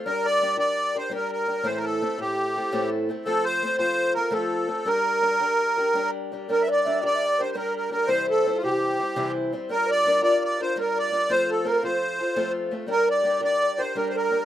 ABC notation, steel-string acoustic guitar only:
X:1
M:9/8
L:1/8
Q:3/8=112
K:Gdor
V:1 name="Steel-string acoustic guitar"
[G,DGB]2 [G,DGB] [G,DGB]2 [DGB] [G,DGB]2 [G,DGB] | [A,,E,A,CEA]2 [A,CEA] [A,,E,A,CEA]2 [A,CEA] [A,,E,A,CEA]2 [A,CEA] | [F,A,CFA]2 [A,CFA] [F,A,CFA]2 [CFA] [F,A,CFA]2 [A,CFA] | [G,DGB]2 [G,DGB] [G,DGB]2 [DGB] [G,DGB]2 [G,DGB] |
[G,DGB]2 [G,DGB] [G,DGB]2 [DGB] [G,DGB]2 [G,DGB] | [C,E,G,CEc]2 [G,CEc] [C,E,G,CEc]2 [G,CEc] [C,E,G,CEc]2 [G,CEc] | [G,DFB]2 [G,DFB] [G,DFB]2 [DFB] [G,DFB]2 [G,DFB] | [F,A,CFA]2 [A,CFA] [F,A,CFA]2 [CFA] [F,A,CFA]2 [A,CFA] |
[G,DGB]2 [G,DGB] [G,DGB]2 [DGB] [G,DGB]2 [G,DGB] |]